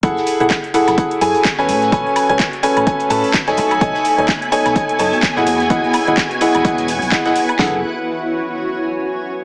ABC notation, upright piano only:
X:1
M:4/4
L:1/16
Q:"Swing 16ths" 1/4=127
K:F#dor
V:1 name="Upright piano"
[EGAf]3 [EGAf] z2 [EGAf]2 [EGAf]2 [EGAg]2 z [CABg]3 | [CABg]3 [CABg] z2 [CABg]2 [CABg]2 [CABa]2 z [DAcg]3 | [DAcg]3 [DAcg] z2 [DAcg]2 [DAcg]2 [DAca]2 z [EGdf]3 | [EGdf]3 [EGdf] z2 [EGdf]2 [EGdf]2 z2 [EGdf] [EGdf] z2 |
[EGAf]2 z12 z2 |]